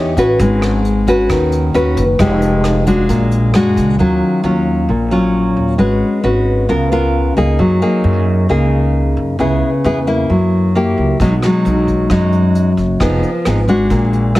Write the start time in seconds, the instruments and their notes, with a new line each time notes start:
Already playing: upright bass E2, nylon-string guitar E3 D#4 G4 C#5
0.17 upright bass A1, nylon-string guitar C#4 F#4 B4, kick, closed hi-hat
0.39 upright bass G#1, nylon-string guitar G#3, kick, closed hi-hat
0.62 cross-stick, closed hi-hat
0.85 closed hi-hat
1.07 nylon-string guitar C#4 F#4 B4, kick, closed hi-hat
1.30 upright bass D#2, nylon-string guitar D#3, kick, cross-stick, closed hi-hat
1.52 closed hi-hat
1.74 upright bass D#2, nylon-string guitar C#4 F#4 B4, closed hi-hat
1.97 upright bass F#1, kick, closed hi-hat
2.19 upright bass F1, nylon-string guitar F3 G#3 D#4 G4, kick, cross-stick, closed hi-hat
2.42 closed hi-hat
2.64 cross-stick, closed hi-hat
2.87 nylon-string guitar G#3 D4 F#4, kick, closed hi-hat
3.09 upright bass A#1, nylon-string guitar A#2, kick, closed hi-hat
3.31 closed hi-hat
3.54 upright bass F#2, nylon-string guitar G#3 D4 F#4, cross-stick, closed hi-hat
3.77 upright bass C#2, kick, closed hi-hat
3.99 upright bass D#2, nylon-string guitar D#3 F#3 C#4 F4
4.44 upright bass D#2, nylon-string guitar F#3 C#4 F4
4.89 upright bass A#1, nylon-string guitar A#2
5.11 nylon-string guitar F#3 C#4 F4
5.57 upright bass D#2
5.78 upright bass G#1, nylon-string guitar G#3 C#4 F#4 B4
6.24 upright bass G#1, nylon-string guitar C#4 F#4 B4
6.69 upright bass C#2, nylon-string guitar C#3 B3 F4 A#4
6.92 nylon-string guitar B3 F4 A#4
7.37 upright bass C#2, nylon-string guitar A#3 D#4 G#4
7.59 upright bass F#2, nylon-string guitar F#3
7.82 nylon-string guitar A#3 D#4 G#4
8.04 upright bass F#2
8.49 upright bass C#2, nylon-string guitar C#3 A#3 D#4 G#4
9.17 upright bass F#2
9.39 upright bass C#2, nylon-string guitar C#3 B3 E4 G#4
9.84 upright bass E2, nylon-string guitar B3 E4 G#4
10.07 nylon-string guitar A#3 E4
10.30 upright bass F#2, nylon-string guitar F#3
10.75 nylon-string guitar A#3 E4 G4
10.98 upright bass C#2
11.20 upright bass B1, nylon-string guitar B2 F#3 G#3 D#4, kick, closed hi-hat
11.43 nylon-string guitar F#3 G#3 D#4, cross-stick, closed hi-hat
11.65 upright bass B1, closed hi-hat
11.88 kick, closed hi-hat
12.10 upright bass F#2, nylon-string guitar F#2 F#3 G#3 D#4, kick, cross-stick, closed hi-hat
12.32 closed hi-hat
12.55 closed hi-hat
12.77 upright bass F#1, kick, closed hi-hat
13.00 upright bass F1, nylon-string guitar F3 B3 D#4 G#4, kick, cross-stick, closed hi-hat
13.23 closed hi-hat
13.45 upright bass G#1, nylon-string guitar B3 D#4 G#4, cross-stick, closed hi-hat
13.68 nylon-string guitar G#3 D4 F#4, kick, closed hi-hat
13.90 upright bass A#1, nylon-string guitar A#2, kick, closed hi-hat
14.13 closed hi-hat
14.35 nylon-string guitar G#3 D4 F#4, cross-stick, closed hi-hat